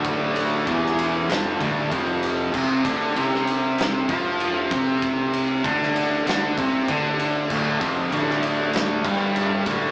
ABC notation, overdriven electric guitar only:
X:1
M:4/4
L:1/8
Q:1/4=97
K:Dm
V:1 name="Overdriven electric guitar" clef=bass
[D,,D,]2 [E,,E,]2 [F,,F,] [D,,D,] [F,,F,]2 | [C,C] [D,D] [C,C]3 [F,F]2 [C,C]- | [C,C]2 [D,D]2 [D,D] [C,C] [D,D]2 | [D,,D,] [F,,F,] [D,,D,]3 [G,,G,]2 [D,,D,] |]